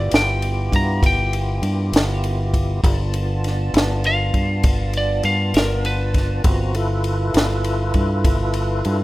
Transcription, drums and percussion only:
0.11 snare loud
0.11 ride medium
0.42 ride medium
0.72 kick medium
0.72 ride medium
1.03 kick loud
1.03 ride medium
1.33 ride medium
1.63 ride medium
1.93 snare loud
1.93 ride medium
2.24 ride medium
2.54 kick medium
2.54 ride medium
2.84 kick loud
2.84 ride medium
3.14 ride medium
3.44 snare soft
3.44 ride medium
3.74 snare loud
3.74 ride medium
4.04 ride medium
4.34 kick medium
4.34 ride medium
4.63 kick loud
4.63 ride medium
4.93 ride medium
5.23 ride medium
5.54 snare loud
5.54 ride medium
5.85 ride medium
6.14 kick medium
6.14 snare soft
6.14 ride medium
6.44 kick loud
6.44 ride medium
6.75 ride medium
7.04 ride medium
7.34 snare loud
7.34 ride medium
7.64 ride medium
7.94 kick medium
7.94 ride medium
8.24 kick loud
8.24 ride medium
8.54 ride medium
8.85 ride medium

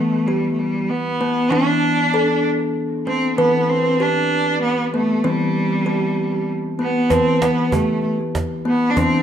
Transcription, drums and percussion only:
7.11 cajon bass medium
7.11 cajon slap soft
7.42 cajon slap medium
7.72 cajon bass medium
8.04 cajon slap soft
8.20 cajon slap soft
8.35 cajon bass medium
8.35 cajon slap medium
8.66 cajon slap soft
8.97 cajon bass medium
8.97 cajon slap soft

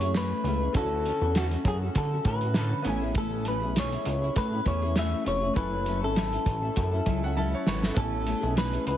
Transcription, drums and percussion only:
0.01 closed hi-hat medium
0.14 snare loud
0.14 closed hi-hat medium
0.45 closed hi-hat medium
0.74 kick loud
0.74 closed hi-hat medium
1.05 closed hi-hat medium
1.35 snare loud
1.35 closed hi-hat medium
1.51 closed hi-hat soft
1.65 kick medium
1.65 closed hi-hat medium
1.95 kick medium
1.95 snare soft
1.95 closed hi-hat medium
2.25 kick medium
2.25 closed hi-hat medium
2.41 closed hi-hat medium
2.54 snare loud
2.54 closed hi-hat medium
2.85 closed hi-hat medium
3.15 kick loud
3.15 closed hi-hat medium
3.45 closed hi-hat medium
3.76 snare medium
3.76 closed hi-hat medium
3.93 closed hi-hat soft
4.05 closed hi-hat medium
4.36 kick medium
4.36 snare soft
4.36 closed hi-hat medium
4.66 kick medium
4.66 closed hi-hat medium
4.96 snare loud
4.96 closed hi-hat medium
5.26 closed hi-hat medium
5.56 kick loud
5.56 closed hi-hat medium
5.86 closed hi-hat medium
6.16 snare medium
6.16 closed hi-hat medium
6.33 closed hi-hat medium
6.46 kick medium
6.46 closed hi-hat medium
6.76 kick medium
6.76 closed hi-hat medium
7.06 kick medium
7.06 closed hi-hat medium
7.67 snare medium
7.83 snare medium
7.97 kick loud
7.97 closed hi-hat medium
8.27 closed hi-hat medium
8.57 snare medium
8.57 closed hi-hat medium
8.73 closed hi-hat soft
8.87 closed hi-hat medium

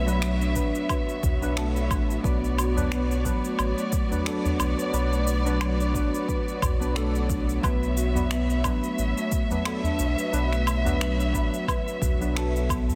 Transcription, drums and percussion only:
0.08 cabasa soft
0.22 finger snap loud
0.22 cabasa soft
0.42 cabasa soft
0.56 kick medium
0.56 cabasa medium
0.75 cabasa soft
0.89 kick medium
0.89 cabasa soft
0.89 low woodblock medium
1.09 cabasa soft
1.23 kick loud
1.23 udu medium
1.23 cabasa medium
1.43 cabasa soft
1.57 finger snap loud
1.57 cabasa soft
1.76 cabasa soft
1.91 kick loud
1.91 cabasa medium
1.91 low woodblock medium
2.11 cabasa soft
2.24 kick loud
2.24 cabasa soft
2.44 cabasa soft
2.58 cabasa medium
2.58 low woodblock medium
2.77 udu medium
2.77 cabasa soft
2.92 finger snap loud
2.92 cabasa soft
3.11 cabasa soft
3.25 kick medium
3.25 cabasa medium
3.45 cabasa soft
3.59 cabasa soft
3.59 low woodblock medium
3.78 cabasa soft
3.93 kick loud
3.93 cabasa medium
4.12 udu loud
4.12 cabasa soft
4.26 finger snap loud
4.26 cabasa soft
4.45 udu medium
4.45 cabasa soft
4.60 cabasa medium
4.60 low woodblock medium
4.79 cabasa soft
4.94 cabasa soft
5.13 cabasa soft
5.27 cabasa medium
5.46 cabasa soft
5.61 finger snap medium
5.61 cabasa soft
5.61 low woodblock medium
5.80 cabasa soft
5.95 kick medium
5.95 cabasa medium
6.15 cabasa soft
6.29 kick medium
6.29 cabasa soft
6.48 cabasa soft
6.62 kick loud
6.62 udu medium
6.62 cabasa medium
6.62 low woodblock medium
6.82 cabasa soft
6.96 finger snap medium
6.96 cabasa soft
7.15 cabasa soft
7.30 kick loud
7.30 cabasa medium
7.49 cabasa soft
7.63 kick loud
7.63 cabasa soft
7.63 low woodblock medium
7.83 cabasa soft
7.97 cabasa medium
8.15 udu medium
8.15 cabasa soft
8.31 finger snap loud
8.31 cabasa soft
8.50 cabasa soft
8.64 kick medium
8.64 cabasa medium
8.64 low woodblock medium
8.84 cabasa soft
8.98 cabasa soft
9.17 cabasa soft
9.32 kick medium
9.32 cabasa medium
9.50 udu medium
9.50 cabasa soft
9.65 finger snap loud
9.65 cabasa soft
9.65 low woodblock medium
9.83 udu medium
9.83 cabasa soft
9.99 cabasa medium
10.18 cabasa soft
10.34 cabasa soft
10.53 finger snap soft
10.53 cabasa soft
10.67 cabasa medium
10.67 low woodblock medium
10.85 udu medium
10.85 cabasa soft
11.01 finger snap loud
11.01 cabasa soft
11.20 cabasa soft
11.34 kick medium
11.34 cabasa medium
11.54 cabasa soft
11.68 kick medium
11.68 cabasa soft
11.68 low woodblock medium
11.88 cabasa soft
12.02 kick loud
12.02 udu medium
12.02 cabasa medium
12.22 cabasa soft
12.37 finger snap loud
12.37 cabasa soft
12.56 cabasa soft
12.69 kick loud
12.69 cabasa medium
12.69 low woodblock medium
12.88 udu medium
12.88 cabasa soft

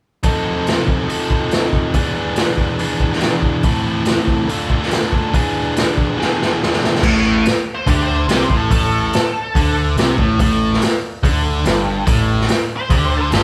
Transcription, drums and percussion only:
0.23 kick medium
0.23 open hi-hat soft
0.67 snare medium
0.67 open hi-hat soft
0.88 kick medium
1.10 open hi-hat soft
1.30 kick medium
1.51 snare medium
1.51 open hi-hat soft
1.73 kick medium
1.94 kick medium
1.94 open hi-hat soft
2.36 snare medium
2.36 open hi-hat soft
2.58 kick medium
2.79 open hi-hat soft
3.00 kick medium
3.12 snare soft
3.20 snare medium
3.20 open hi-hat soft
3.42 kick medium
3.63 kick medium
3.63 open hi-hat soft
4.05 snare medium
4.05 open hi-hat soft
4.27 kick medium
4.49 open hi-hat soft
4.70 kick medium
4.82 snare soft
4.91 snare medium
4.91 open hi-hat soft
5.12 kick medium
5.34 kick medium
5.34 open hi-hat soft
5.76 snare loud
5.76 open hi-hat soft
5.97 kick medium
6.21 snare soft
6.42 snare medium
6.63 snare medium
6.73 snare medium
6.84 snare medium
6.95 snare medium
7.03 kick loud
7.03 crash loud
7.45 snare loud
7.45 open hi-hat medium
7.87 kick loud
7.87 open hi-hat medium
8.29 snare loud
8.29 open hi-hat medium
8.50 kick medium
8.71 kick loud
8.71 open hi-hat medium
9.13 snare loud
9.13 open hi-hat soft
9.55 kick medium
9.55 open hi-hat soft
9.97 snare loud
9.97 open hi-hat soft
10.10 snare soft
10.18 kick loud
10.39 kick loud
10.39 open hi-hat medium
10.73 snare soft
10.81 snare loud
10.81 open hi-hat soft
11.23 kick loud
11.23 open hi-hat medium
11.65 snare loud
11.65 open hi-hat medium
12.07 kick loud
12.07 open hi-hat medium
12.41 snare soft
12.48 snare loud
12.48 open hi-hat medium
12.90 kick medium
12.90 open hi-hat soft
13.32 snare loud
13.32 open hi-hat soft

